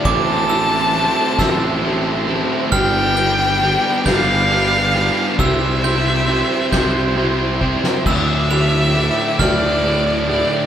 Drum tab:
CC |------------|------------|------------|x-----------|
RD |x-x-x-x-x-x-|x-x-x-x-x-x-|x-x-x-x-x---|--x-x-x-x-x-|
SD |------o-----|------o-----|------o----o|------o-----|
BD |o-----o-----|o-----o-----|o-----o---o-|o-----o-----|